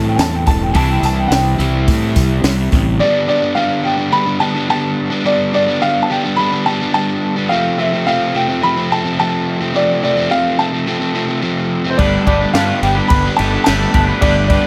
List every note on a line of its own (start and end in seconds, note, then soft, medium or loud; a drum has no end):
0.00 0.17 A2 medium
0.00 0.73 A2 medium
0.00 0.74 A2 medium
0.00 0.73 E3 medium
0.00 0.74 E3 medium
0.00 0.75 G3 medium
0.00 0.74 A3 medium
0.00 0.74 C4 medium
0.00 0.74 C4 loud
0.00 0.73 E4 medium
0.00 0.75 E4 medium
0.08 0.20 G5 medium
0.16 0.45 E2 loud
0.16 0.19 G#5 medium
0.16 snare loud
0.16 open hi-hat medium
0.16 tambourine medium
0.21 0.33 A5 loud
0.34 0.47 G5 medium
0.47 0.73 E1 medium
0.47 0.60 A5 medium
0.47 kick medium
0.47 open hi-hat medium
0.62 0.75 G5 medium
0.72 1.01 C2 medium
0.72 1.58 C3 medium
0.72 2.98 C3 medium
0.72 2.99 E3 medium
0.72 1.58 G3 medium
0.72 2.99 G3 medium
0.72 0.75 G#5 medium
0.72 kick loud
0.72 open hi-hat medium
0.76 1.58 C4 loud
0.76 2.99 D4 loud
0.76 3.00 E4 loud
0.76 1.57 E4 loud
0.76 0.89 A5 medium
0.90 1.03 G5 medium
1.02 1.29 C2 medium
1.02 1.18 A5 medium
1.02 open hi-hat medium
1.02 tambourine medium
1.18 1.31 G5 medium
1.28 1.57 C2 medium
1.28 1.31 F#5 medium
1.28 tambourine medium
1.32 1.87 G5 medium
1.32 snare loud
1.32 open hi-hat medium
1.58 1.85 C2 medium
1.58 3.00 C3 medium
1.58 2.99 G3 medium
1.58 2.99 C4 medium
1.58 2.98 E4 medium
1.58 open hi-hat medium
1.88 2.14 A2 medium
1.88 kick loud
1.88 open hi-hat medium
1.88 tambourine medium
2.16 2.42 C2 medium
2.16 kick medium
2.16 open hi-hat medium
2.16 tambourine medium
2.43 2.70 C2 medium
2.43 snare loud
2.43 open hi-hat medium
2.43 tambourine medium
2.72 2.98 A1 medium
2.72 kick medium
2.72 open hi-hat medium
2.72 tambourine soft
2.99 3.55 G2 loud
2.99 3.26 D3 loud
2.99 3.28 G3 loud
2.99 3.29 B3 medium
2.99 3.29 D4 loud
2.99 3.27 D5 loud
3.28 3.55 D3 medium
3.28 3.44 G3 medium
3.28 3.43 B3 medium
3.28 3.42 D4 medium
3.28 3.57 D5 medium
3.42 3.57 G3 medium
3.42 3.57 B3 medium
3.42 3.58 D4 medium
3.55 4.68 G2 medium
3.55 3.83 D3 medium
3.55 3.84 G3 loud
3.55 3.85 B3 loud
3.55 3.86 D4 loud
3.55 3.85 F5 medium
3.84 4.10 D3 medium
3.84 3.98 G3 medium
3.84 3.97 B3 medium
3.84 3.96 D4 medium
3.84 4.13 G5 medium
3.97 4.11 G3 medium
3.97 4.12 B3 medium
3.97 4.12 D4 medium
4.11 4.39 D3 medium
4.11 4.27 G3 medium
4.11 4.26 B3 medium
4.11 4.25 D4 medium
4.11 4.42 B5 loud
4.26 4.40 G3 medium
4.26 4.41 B3 medium
4.26 4.41 D4 medium
4.40 4.68 D3 medium
4.40 4.55 G3 medium
4.40 4.54 B3 medium
4.40 4.53 D4 medium
4.40 4.67 A5 medium
4.54 4.68 G3 medium
4.54 4.69 B3 medium
4.54 4.69 D4 medium
4.68 5.23 G2 medium
4.68 5.24 D3 medium
4.68 5.11 G3 medium
4.68 5.10 B3 loud
4.68 5.09 D4 loud
4.68 5.09 A5 loud
5.10 5.24 G3 medium
5.10 5.25 B3 medium
5.10 5.25 D4 medium
5.24 5.80 G2 loud
5.24 5.52 D3 loud
5.24 5.52 G3 loud
5.24 5.53 B3 loud
5.24 5.54 D4 loud
5.24 5.52 D5 medium
5.53 5.80 D3 medium
5.53 5.68 G3 medium
5.53 5.67 B3 medium
5.53 5.66 D4 medium
5.53 5.83 D5 medium
5.67 5.81 G3 medium
5.67 5.81 B3 medium
5.67 5.82 D4 medium
5.81 6.37 G2 medium
5.81 6.08 D3 loud
5.81 6.09 G3 loud
5.81 6.10 B3 loud
5.81 6.10 D4 loud
5.81 6.04 F5 medium
6.03 6.10 A5 medium
6.09 6.36 D3 medium
6.09 6.25 G3 medium
6.09 6.24 B3 medium
6.09 6.23 D4 medium
6.09 6.36 G5 medium
6.24 6.37 G3 medium
6.24 6.38 B3 medium
6.24 6.39 D4 medium
6.36 6.65 D3 medium
6.36 6.53 G3 medium
6.36 6.52 B3 medium
6.36 6.51 D4 medium
6.36 6.66 B5 loud
6.52 6.65 G3 medium
6.52 6.66 B3 medium
6.52 6.67 D4 medium
6.66 6.93 D3 medium
6.66 6.81 G3 medium
6.66 6.80 B3 medium
6.66 6.79 D4 medium
6.66 6.92 A5 medium
6.80 6.94 G3 medium
6.80 6.94 B3 medium
6.80 6.95 D4 medium
6.94 7.48 G2 medium
6.94 7.49 D3 medium
6.94 7.37 G3 medium
6.94 7.36 B3 medium
6.94 7.35 D4 loud
6.94 7.33 A5 loud
7.36 7.50 G3 medium
7.36 7.49 B3 medium
7.36 7.49 D4 medium
7.49 8.06 F2 medium
7.49 7.77 C3 medium
7.49 7.79 F3 loud
7.49 7.79 A3 loud
7.49 7.80 C4 loud
7.49 7.76 F5 medium
7.78 8.06 C3 medium
7.78 7.94 F3 medium
7.78 7.93 A3 medium
7.78 7.92 C4 medium
7.78 8.07 E5 medium
7.92 8.07 F3 medium
7.92 8.07 A3 medium
7.92 8.08 C4 medium
8.06 9.19 F2 loud
8.06 8.33 C3 loud
8.06 8.35 F3 loud
8.06 8.35 A3 loud
8.06 8.36 C4 loud
8.06 8.35 F5 medium
8.34 8.61 C3 medium
8.34 8.49 F3 medium
8.34 8.49 A3 medium
8.34 8.47 C4 medium
8.34 8.63 G5 medium
8.48 8.62 F3 medium
8.48 8.64 A3 medium
8.48 8.64 C4 medium
8.63 8.89 C3 medium
8.63 8.77 F3 medium
8.63 8.77 A3 medium
8.63 8.75 C4 medium
8.63 8.92 B5 loud
8.77 8.90 F3 medium
8.77 8.92 A3 medium
8.77 8.92 C4 medium
8.90 9.18 C3 medium
8.90 9.06 F3 medium
8.90 9.05 A3 medium
8.90 9.03 C4 medium
8.90 9.17 A5 medium
9.04 9.19 F3 medium
9.04 9.20 A3 medium
9.04 9.20 C4 medium
9.19 9.73 F2 medium
9.19 9.73 C3 medium
9.19 9.62 F3 medium
9.19 9.62 A3 loud
9.19 9.60 C4 loud
9.19 9.58 A5 medium
9.61 9.74 F3 medium
9.61 9.75 A3 medium
9.61 9.75 C4 medium
9.74 10.28 F2 loud
9.74 10.02 C3 loud
9.74 10.02 F3 loud
9.74 10.04 A3 loud
9.74 10.04 C4 loud
9.74 10.02 D5 medium
10.03 10.29 C3 medium
10.03 10.18 F3 medium
10.03 10.17 A3 medium
10.03 10.15 C4 medium
10.03 10.32 D5 medium
10.16 10.29 F3 medium
10.16 10.31 A3 medium
10.16 10.31 C4 medium
10.30 10.86 F2 medium
10.30 10.57 C3 loud
10.30 10.58 F3 medium
10.30 10.60 A3 medium
10.30 10.59 C4 loud
10.30 10.60 F5 medium
10.58 10.85 C3 medium
10.58 10.73 F3 medium
10.58 10.73 A3 medium
10.58 10.71 C4 medium
10.58 11.39 A5 medium
10.72 10.86 F3 medium
10.72 10.87 A3 medium
10.72 10.87 C4 medium
10.86 11.13 C3 medium
10.86 11.01 F3 medium
10.86 11.01 A3 medium
10.86 10.98 C4 medium
10.99 11.14 F3 medium
10.99 11.15 A3 medium
10.99 11.15 C4 medium
11.14 11.41 C3 medium
11.14 11.29 F3 medium
11.14 11.29 A3 medium
11.14 11.27 C4 medium
11.28 11.42 F3 medium
11.28 11.43 A3 medium
11.28 11.43 C4 medium
11.42 11.96 F2 medium
11.42 11.97 C3 medium
11.42 11.85 F3 medium
11.42 11.85 A3 medium
11.42 11.83 C4 loud
11.84 11.98 F3 medium
11.84 12.00 A3 medium
11.84 11.97 C4 medium
11.90 11.97 C4 medium
11.90 11.98 C5 medium
11.97 12.16 G1 loud
11.97 12.55 G2 loud
11.97 12.26 D3 loud
11.97 12.54 G3 medium
11.97 12.27 G3 medium
11.97 12.26 A3 medium
11.97 12.28 B3 loud
11.97 12.24 D4 medium
11.97 12.27 D4 loud
11.97 12.28 G4 loud
11.97 12.28 B4 loud
11.97 12.24 D5 loud
11.97 kick loud
11.97 crash medium
12.01 12.29 D4 loud
12.25 12.44 G1 medium
12.25 12.55 D3 medium
12.25 12.43 G3 medium
12.25 12.54 A3 medium
12.25 12.42 B3 medium
12.25 12.52 D4 medium
12.25 12.55 D4 medium
12.25 12.55 G4 medium
12.25 12.56 B4 medium
12.25 12.52 D5 medium
12.25 kick medium
12.25 crash medium
12.29 12.40 D4 medium
12.41 12.56 G3 medium
12.41 12.56 B3 medium
12.41 12.57 D4 medium
12.53 12.71 G2 medium
12.53 13.66 G2 medium
12.53 12.81 D3 loud
12.53 13.40 G3 loud
12.53 12.83 G3 loud
12.53 12.82 A3 loud
12.53 12.69 D4 loud
12.53 12.79 F4 medium
12.53 12.68 G4 loud
12.53 12.68 B4 loud
12.53 12.83 F5 loud
12.53 snare loud
12.53 tambourine loud
12.53 crash medium
12.57 12.84 B3 loud
12.57 12.85 D4 loud
12.68 12.82 D4 medium
12.68 12.82 G4 medium
12.68 12.83 B4 medium
12.82 12.99 G1 medium
12.82 13.09 D3 medium
12.82 12.97 G3 medium
12.82 12.97 B3 medium
12.82 12.95 D4 medium
12.82 12.95 G4 medium
12.82 12.88 G5 loud
12.82 muted clean electric guitar stroke soft
12.82 crash medium
12.95 13.10 G3 medium
12.95 13.11 B3 medium
12.95 13.12 D4 medium
12.95 13.36 D4 medium
12.95 13.37 G4 medium
12.95 13.38 B4 medium
13.08 13.27 G1 medium
13.08 13.38 D3 medium
13.08 13.26 G3 medium
13.08 13.36 B4 medium
13.08 13.38 B5 loud
13.08 kick loud
13.08 crash medium
13.12 13.25 B3 medium
13.12 13.24 D4 medium
13.25 13.39 G3 medium
13.25 13.40 B3 medium
13.25 13.41 D4 medium
13.36 13.56 G1 medium
13.36 13.67 D3 medium
13.36 13.54 G3 medium
13.36 13.65 A3 medium
13.36 13.52 D4 medium
13.36 13.51 G4 medium
13.36 13.64 A4 medium
13.36 13.49 B4 medium
13.36 13.63 A5 loud
13.36 crash medium
13.41 13.53 B3 medium
13.41 13.52 D4 medium
13.50 13.64 D4 medium
13.50 13.68 D4 medium
13.50 13.65 G4 medium
13.50 13.66 B4 medium
13.54 13.67 G3 medium
13.54 13.68 B3 medium
13.64 13.84 G1 loud
13.64 14.21 G2 medium
13.64 14.22 D3 medium
13.64 14.07 G3 medium
13.64 13.92 A3 medium
13.64 13.80 D4 medium
13.64 13.79 G4 loud
13.64 14.05 A4 medium
13.64 13.78 B4 loud
13.64 14.04 A5 loud
13.64 snare loud
13.64 tambourine loud
13.64 crash medium
13.68 14.10 G3 loud
13.68 14.09 B3 medium
13.68 14.08 D4 medium
13.79 13.93 D4 medium
13.79 13.93 G4 medium
13.79 13.94 B4 medium
13.92 14.11 G1 medium
13.92 14.21 A3 medium
13.92 14.08 D4 medium
13.92 14.07 G4 medium
13.92 14.06 B4 medium
13.92 kick medium
13.92 crash medium
14.07 14.23 B3 medium
14.07 14.24 D4 medium
14.07 14.21 D4 medium
14.07 14.22 G4 medium
14.07 14.22 B4 medium
14.11 14.22 G3 medium
14.21 14.56 G1 loud
14.21 14.67 G2 medium
14.21 14.50 D3 medium
14.21 14.67 G3 loud
14.21 14.51 G3 loud
14.21 14.48 A3 loud
14.21 14.51 B3 loud
14.21 14.48 D4 loud
14.21 14.48 D4 medium
14.21 14.52 D4 loud
14.21 14.48 G4 loud
14.21 14.49 B4 loud
14.21 14.46 D5 medium
14.21 kick loud
14.21 crash medium
14.47 14.67 D3 medium
14.47 14.67 A3 medium
14.47 14.67 D4 medium
14.47 14.67 G4 medium
14.47 14.67 B4 medium
14.47 14.67 D5 medium
14.47 kick medium
14.47 crash medium
14.52 14.65 G3 medium
14.52 14.64 B3 medium
14.52 14.63 D4 medium
14.64 14.67 D4 medium